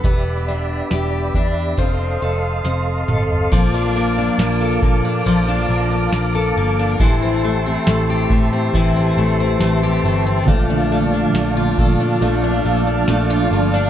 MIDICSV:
0, 0, Header, 1, 6, 480
1, 0, Start_track
1, 0, Tempo, 869565
1, 23, Time_signature, 4, 2, 24, 8
1, 7672, End_track
2, 0, Start_track
2, 0, Title_t, "Tonewheel organ"
2, 0, Program_c, 0, 16
2, 0, Note_on_c, 0, 83, 60
2, 23, Note_on_c, 0, 67, 55
2, 24, Note_on_c, 0, 76, 56
2, 25, Note_on_c, 0, 74, 56
2, 962, Note_off_c, 0, 83, 0
2, 973, Note_off_c, 0, 67, 0
2, 974, Note_off_c, 0, 74, 0
2, 974, Note_off_c, 0, 76, 0
2, 983, Note_on_c, 0, 77, 55
2, 984, Note_on_c, 0, 75, 53
2, 985, Note_on_c, 0, 69, 63
2, 985, Note_on_c, 0, 84, 62
2, 1933, Note_off_c, 0, 77, 0
2, 1934, Note_off_c, 0, 69, 0
2, 1934, Note_off_c, 0, 75, 0
2, 1934, Note_off_c, 0, 84, 0
2, 1941, Note_on_c, 0, 58, 65
2, 1943, Note_on_c, 0, 77, 61
2, 1943, Note_on_c, 0, 81, 59
2, 1943, Note_on_c, 0, 86, 73
2, 3843, Note_off_c, 0, 58, 0
2, 3843, Note_off_c, 0, 86, 0
2, 3844, Note_off_c, 0, 77, 0
2, 3864, Note_on_c, 0, 67, 66
2, 3866, Note_on_c, 0, 84, 67
2, 3867, Note_on_c, 0, 76, 62
2, 5764, Note_off_c, 0, 67, 0
2, 5765, Note_off_c, 0, 76, 0
2, 5765, Note_off_c, 0, 84, 0
2, 5779, Note_on_c, 0, 74, 66
2, 5780, Note_on_c, 0, 77, 75
2, 5781, Note_on_c, 0, 65, 63
2, 7672, Note_off_c, 0, 65, 0
2, 7672, Note_off_c, 0, 74, 0
2, 7672, Note_off_c, 0, 77, 0
2, 7672, Note_off_c, 0, 81, 0
2, 7672, End_track
3, 0, Start_track
3, 0, Title_t, "Twelve-string acoustic guitar"
3, 0, Program_c, 1, 25
3, 0, Note_on_c, 1, 62, 52
3, 0, Note_on_c, 1, 69, 51
3, 25, Note_on_c, 1, 59, 76
3, 71, Note_off_c, 1, 62, 0
3, 73, Note_off_c, 1, 69, 0
3, 267, Note_on_c, 1, 62, 50
3, 508, Note_on_c, 1, 67, 57
3, 740, Note_off_c, 1, 62, 0
3, 747, Note_on_c, 1, 62, 55
3, 981, Note_off_c, 1, 59, 0
3, 983, Note_on_c, 1, 60, 73
3, 1033, Note_off_c, 1, 62, 0
3, 1033, Note_off_c, 1, 67, 0
3, 1226, Note_on_c, 1, 69, 54
3, 1455, Note_off_c, 1, 60, 0
3, 1462, Note_on_c, 1, 60, 58
3, 1699, Note_off_c, 1, 69, 0
3, 1701, Note_on_c, 1, 69, 56
3, 1945, Note_on_c, 1, 53, 83
3, 1990, Note_off_c, 1, 60, 0
3, 2065, Note_on_c, 1, 62, 60
3, 2184, Note_on_c, 1, 58, 56
3, 2201, Note_off_c, 1, 69, 0
3, 2301, Note_off_c, 1, 62, 0
3, 2307, Note_on_c, 1, 62, 58
3, 2420, Note_off_c, 1, 58, 0
3, 2427, Note_on_c, 1, 58, 66
3, 2545, Note_on_c, 1, 69, 57
3, 2658, Note_off_c, 1, 58, 0
3, 2665, Note_on_c, 1, 58, 59
3, 2780, Note_off_c, 1, 62, 0
3, 2787, Note_on_c, 1, 62, 59
3, 2898, Note_off_c, 1, 53, 0
3, 2905, Note_on_c, 1, 53, 75
3, 3018, Note_off_c, 1, 62, 0
3, 3024, Note_on_c, 1, 62, 64
3, 3139, Note_off_c, 1, 58, 0
3, 3146, Note_on_c, 1, 58, 58
3, 3258, Note_off_c, 1, 62, 0
3, 3265, Note_on_c, 1, 62, 50
3, 3377, Note_off_c, 1, 58, 0
3, 3383, Note_on_c, 1, 58, 63
3, 3501, Note_off_c, 1, 69, 0
3, 3503, Note_on_c, 1, 69, 72
3, 3621, Note_off_c, 1, 58, 0
3, 3628, Note_on_c, 1, 58, 61
3, 3742, Note_off_c, 1, 62, 0
3, 3749, Note_on_c, 1, 62, 66
3, 3864, Note_off_c, 1, 53, 0
3, 3866, Note_on_c, 1, 52, 85
3, 3913, Note_off_c, 1, 58, 0
3, 3914, Note_off_c, 1, 62, 0
3, 3987, Note_on_c, 1, 60, 56
3, 4108, Note_on_c, 1, 57, 57
3, 4222, Note_off_c, 1, 60, 0
3, 4229, Note_on_c, 1, 60, 60
3, 4349, Note_off_c, 1, 57, 0
3, 4351, Note_on_c, 1, 57, 66
3, 4468, Note_off_c, 1, 69, 0
3, 4470, Note_on_c, 1, 67, 65
3, 4586, Note_off_c, 1, 57, 0
3, 4588, Note_on_c, 1, 57, 62
3, 4700, Note_off_c, 1, 60, 0
3, 4707, Note_on_c, 1, 60, 57
3, 4822, Note_off_c, 1, 52, 0
3, 4828, Note_on_c, 1, 52, 80
3, 4939, Note_off_c, 1, 60, 0
3, 4946, Note_on_c, 1, 60, 59
3, 5064, Note_off_c, 1, 57, 0
3, 5067, Note_on_c, 1, 57, 61
3, 5182, Note_off_c, 1, 60, 0
3, 5189, Note_on_c, 1, 60, 61
3, 5307, Note_off_c, 1, 57, 0
3, 5309, Note_on_c, 1, 57, 61
3, 5420, Note_off_c, 1, 67, 0
3, 5427, Note_on_c, 1, 67, 66
3, 5545, Note_off_c, 1, 57, 0
3, 5547, Note_on_c, 1, 57, 64
3, 5658, Note_off_c, 1, 60, 0
3, 5665, Note_on_c, 1, 60, 68
3, 5781, Note_off_c, 1, 57, 0
3, 5783, Note_on_c, 1, 57, 86
3, 5832, Note_off_c, 1, 60, 0
3, 5833, Note_off_c, 1, 52, 0
3, 5833, Note_off_c, 1, 67, 0
3, 5905, Note_on_c, 1, 62, 64
3, 6024, Note_off_c, 1, 57, 0
3, 6026, Note_on_c, 1, 57, 59
3, 6141, Note_off_c, 1, 62, 0
3, 6148, Note_on_c, 1, 62, 66
3, 6263, Note_off_c, 1, 57, 0
3, 6265, Note_on_c, 1, 57, 65
3, 6384, Note_on_c, 1, 65, 58
3, 6504, Note_off_c, 1, 57, 0
3, 6506, Note_on_c, 1, 57, 65
3, 6617, Note_off_c, 1, 62, 0
3, 6624, Note_on_c, 1, 62, 62
3, 6743, Note_off_c, 1, 57, 0
3, 6745, Note_on_c, 1, 57, 75
3, 6858, Note_off_c, 1, 62, 0
3, 6865, Note_on_c, 1, 62, 61
3, 6981, Note_off_c, 1, 57, 0
3, 6983, Note_on_c, 1, 57, 56
3, 7096, Note_off_c, 1, 62, 0
3, 7102, Note_on_c, 1, 62, 55
3, 7222, Note_off_c, 1, 57, 0
3, 7224, Note_on_c, 1, 57, 67
3, 7334, Note_off_c, 1, 65, 0
3, 7341, Note_on_c, 1, 65, 73
3, 7462, Note_off_c, 1, 57, 0
3, 7465, Note_on_c, 1, 57, 59
3, 7576, Note_off_c, 1, 62, 0
3, 7583, Note_on_c, 1, 62, 66
3, 7672, Note_off_c, 1, 57, 0
3, 7672, Note_off_c, 1, 62, 0
3, 7672, Note_off_c, 1, 65, 0
3, 7672, End_track
4, 0, Start_track
4, 0, Title_t, "Clean electric guitar"
4, 0, Program_c, 2, 27
4, 5771, Note_on_c, 2, 46, 85
4, 5780, Note_on_c, 2, 50, 93
4, 5787, Note_on_c, 2, 53, 102
4, 5793, Note_on_c, 2, 58, 98
4, 5797, Note_on_c, 2, 62, 91
4, 5803, Note_on_c, 2, 69, 99
4, 6727, Note_off_c, 2, 53, 0
4, 6734, Note_on_c, 2, 53, 73
4, 6735, Note_off_c, 2, 58, 0
4, 6737, Note_off_c, 2, 46, 0
4, 6741, Note_off_c, 2, 50, 0
4, 6741, Note_off_c, 2, 62, 0
4, 6742, Note_on_c, 2, 58, 75
4, 6748, Note_on_c, 2, 62, 77
4, 6752, Note_off_c, 2, 69, 0
4, 6754, Note_on_c, 2, 69, 77
4, 7208, Note_off_c, 2, 53, 0
4, 7215, Note_on_c, 2, 53, 65
4, 7216, Note_off_c, 2, 58, 0
4, 7221, Note_off_c, 2, 62, 0
4, 7222, Note_on_c, 2, 58, 68
4, 7228, Note_on_c, 2, 62, 78
4, 7232, Note_off_c, 2, 69, 0
4, 7234, Note_on_c, 2, 69, 74
4, 7672, Note_off_c, 2, 53, 0
4, 7672, Note_off_c, 2, 58, 0
4, 7672, Note_off_c, 2, 62, 0
4, 7672, Note_off_c, 2, 69, 0
4, 7672, End_track
5, 0, Start_track
5, 0, Title_t, "Picked electric bass"
5, 0, Program_c, 3, 34
5, 23, Note_on_c, 3, 28, 94
5, 445, Note_off_c, 3, 28, 0
5, 504, Note_on_c, 3, 28, 69
5, 715, Note_off_c, 3, 28, 0
5, 743, Note_on_c, 3, 40, 83
5, 954, Note_off_c, 3, 40, 0
5, 982, Note_on_c, 3, 29, 105
5, 1194, Note_off_c, 3, 29, 0
5, 1226, Note_on_c, 3, 29, 72
5, 1436, Note_off_c, 3, 29, 0
5, 1462, Note_on_c, 3, 29, 87
5, 1673, Note_off_c, 3, 29, 0
5, 1702, Note_on_c, 3, 31, 75
5, 1914, Note_off_c, 3, 31, 0
5, 1942, Note_on_c, 3, 34, 96
5, 2365, Note_off_c, 3, 34, 0
5, 2421, Note_on_c, 3, 34, 97
5, 2633, Note_off_c, 3, 34, 0
5, 2664, Note_on_c, 3, 46, 106
5, 2874, Note_off_c, 3, 46, 0
5, 2905, Note_on_c, 3, 34, 106
5, 3115, Note_off_c, 3, 34, 0
5, 3142, Note_on_c, 3, 34, 100
5, 3353, Note_off_c, 3, 34, 0
5, 3381, Note_on_c, 3, 34, 92
5, 3593, Note_off_c, 3, 34, 0
5, 3625, Note_on_c, 3, 31, 87
5, 3835, Note_off_c, 3, 31, 0
5, 3863, Note_on_c, 3, 33, 103
5, 4285, Note_off_c, 3, 33, 0
5, 4345, Note_on_c, 3, 33, 92
5, 4555, Note_off_c, 3, 33, 0
5, 4582, Note_on_c, 3, 45, 102
5, 4794, Note_off_c, 3, 45, 0
5, 4822, Note_on_c, 3, 33, 109
5, 5033, Note_off_c, 3, 33, 0
5, 5062, Note_on_c, 3, 33, 97
5, 5274, Note_off_c, 3, 33, 0
5, 5302, Note_on_c, 3, 33, 84
5, 5513, Note_off_c, 3, 33, 0
5, 5540, Note_on_c, 3, 31, 101
5, 5753, Note_off_c, 3, 31, 0
5, 5784, Note_on_c, 3, 34, 111
5, 6206, Note_off_c, 3, 34, 0
5, 6260, Note_on_c, 3, 34, 103
5, 6473, Note_off_c, 3, 34, 0
5, 6500, Note_on_c, 3, 46, 99
5, 6712, Note_off_c, 3, 46, 0
5, 6742, Note_on_c, 3, 34, 106
5, 6954, Note_off_c, 3, 34, 0
5, 6982, Note_on_c, 3, 34, 93
5, 7194, Note_off_c, 3, 34, 0
5, 7221, Note_on_c, 3, 34, 103
5, 7433, Note_off_c, 3, 34, 0
5, 7458, Note_on_c, 3, 31, 84
5, 7671, Note_off_c, 3, 31, 0
5, 7672, End_track
6, 0, Start_track
6, 0, Title_t, "Drums"
6, 20, Note_on_c, 9, 42, 53
6, 22, Note_on_c, 9, 36, 101
6, 75, Note_off_c, 9, 42, 0
6, 78, Note_off_c, 9, 36, 0
6, 502, Note_on_c, 9, 38, 91
6, 504, Note_on_c, 9, 42, 47
6, 557, Note_off_c, 9, 38, 0
6, 559, Note_off_c, 9, 42, 0
6, 741, Note_on_c, 9, 36, 76
6, 797, Note_off_c, 9, 36, 0
6, 979, Note_on_c, 9, 42, 58
6, 982, Note_on_c, 9, 36, 67
6, 1034, Note_off_c, 9, 42, 0
6, 1037, Note_off_c, 9, 36, 0
6, 1461, Note_on_c, 9, 38, 42
6, 1461, Note_on_c, 9, 42, 63
6, 1516, Note_off_c, 9, 42, 0
6, 1517, Note_off_c, 9, 38, 0
6, 1703, Note_on_c, 9, 45, 76
6, 1758, Note_off_c, 9, 45, 0
6, 1823, Note_on_c, 9, 43, 70
6, 1878, Note_off_c, 9, 43, 0
6, 1942, Note_on_c, 9, 49, 90
6, 1942, Note_on_c, 9, 51, 54
6, 1943, Note_on_c, 9, 36, 101
6, 1997, Note_off_c, 9, 49, 0
6, 1997, Note_off_c, 9, 51, 0
6, 1998, Note_off_c, 9, 36, 0
6, 2424, Note_on_c, 9, 38, 103
6, 2424, Note_on_c, 9, 54, 67
6, 2427, Note_on_c, 9, 51, 47
6, 2480, Note_off_c, 9, 38, 0
6, 2480, Note_off_c, 9, 54, 0
6, 2482, Note_off_c, 9, 51, 0
6, 2663, Note_on_c, 9, 36, 93
6, 2718, Note_off_c, 9, 36, 0
6, 2904, Note_on_c, 9, 51, 60
6, 2959, Note_off_c, 9, 51, 0
6, 3381, Note_on_c, 9, 38, 106
6, 3381, Note_on_c, 9, 51, 62
6, 3382, Note_on_c, 9, 54, 61
6, 3436, Note_off_c, 9, 51, 0
6, 3437, Note_off_c, 9, 38, 0
6, 3437, Note_off_c, 9, 54, 0
6, 3861, Note_on_c, 9, 51, 53
6, 3863, Note_on_c, 9, 36, 113
6, 3917, Note_off_c, 9, 51, 0
6, 3918, Note_off_c, 9, 36, 0
6, 4344, Note_on_c, 9, 38, 108
6, 4344, Note_on_c, 9, 54, 65
6, 4346, Note_on_c, 9, 51, 49
6, 4399, Note_off_c, 9, 38, 0
6, 4399, Note_off_c, 9, 54, 0
6, 4401, Note_off_c, 9, 51, 0
6, 4583, Note_on_c, 9, 36, 97
6, 4638, Note_off_c, 9, 36, 0
6, 4823, Note_on_c, 9, 36, 82
6, 4825, Note_on_c, 9, 51, 64
6, 4879, Note_off_c, 9, 36, 0
6, 4880, Note_off_c, 9, 51, 0
6, 5302, Note_on_c, 9, 38, 97
6, 5302, Note_on_c, 9, 51, 60
6, 5303, Note_on_c, 9, 54, 58
6, 5357, Note_off_c, 9, 51, 0
6, 5358, Note_off_c, 9, 38, 0
6, 5358, Note_off_c, 9, 54, 0
6, 5784, Note_on_c, 9, 36, 110
6, 5785, Note_on_c, 9, 51, 47
6, 5839, Note_off_c, 9, 36, 0
6, 5840, Note_off_c, 9, 51, 0
6, 6264, Note_on_c, 9, 38, 108
6, 6264, Note_on_c, 9, 54, 60
6, 6266, Note_on_c, 9, 51, 50
6, 6319, Note_off_c, 9, 38, 0
6, 6319, Note_off_c, 9, 54, 0
6, 6321, Note_off_c, 9, 51, 0
6, 6501, Note_on_c, 9, 36, 99
6, 6556, Note_off_c, 9, 36, 0
6, 6742, Note_on_c, 9, 51, 61
6, 6797, Note_off_c, 9, 51, 0
6, 7218, Note_on_c, 9, 51, 55
6, 7219, Note_on_c, 9, 38, 101
6, 7219, Note_on_c, 9, 54, 56
6, 7274, Note_off_c, 9, 38, 0
6, 7274, Note_off_c, 9, 51, 0
6, 7274, Note_off_c, 9, 54, 0
6, 7672, End_track
0, 0, End_of_file